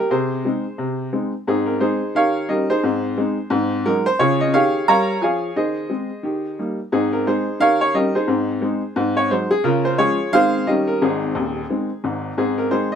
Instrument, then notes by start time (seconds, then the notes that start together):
upright piano
Already playing: A#4
0.00 G4
0.11 C3 G#4 C5
0.45 G#3 C4 D#4
0.78 C3
1.13 G#3 C4 D#4
1.47 G#2 C4 D#4 G#4
1.66 A#4
1.80 G#3 C4 D#4 G#4 C5
2.15 D#3 G4 A#4 C#5 F5
2.49 G3 C#4 D#4 G4 A#4 D#5
2.70 D#4 G#4 C5
2.83 G#2 C4
3.17 G#3 C4 D#4
3.50 G#2 C4
3.85 F#3 G#3 D#4 A#4
4.06 C5
4.19 C#3 F4 G#4 C#5
4.41 D#5
4.53 D#3 G4 G#4 C#5 F5
4.88 G3 A#4 C#5 F5 A#5
5.22 F3 G#4 C#5 F5 G#5
5.56 D#3 G#4 C5 D#5
5.90 G#3 C4
6.23 D#3 G4
6.59 G3 A#3 D#4
6.92 G#2 C4 D#4 G#4
7.13 A#4
7.27 G#3 C4 D#4 G#4 C5
7.60 D#3 G4 A#4 C#5 F5
7.81 C#5
7.94 G3 C#4 D#4 G4 A#4 D#5
8.15 D#4 G#4 C5
8.27 G#2 C4
8.62 G#3 C4 D#4
8.96 G#2 C4
9.17 C#5
9.31 F#3 G#3 D#4 C5
9.51 G#4
9.64 C#3 C#4 F4 A#4
9.85 C5
9.98 F3 G#3 C#4 F4 G#4 C#5
10.33 D#3 G#3 C4 G#4 C5 F5
10.67 D#3 G3 C#4 G4 A#4 D#5
10.88 A#4
11.02 G#1 G#2 C4 D#4 G#4
11.35 D#1 D#2
11.70 D#3 G#3 C4
12.04 G#1 G#2
12.38 G#2 C4 D#4 G#4
12.58 A#4
12.71 D#3 G#3 C4 D#4 G#4 C5
12.92 D#5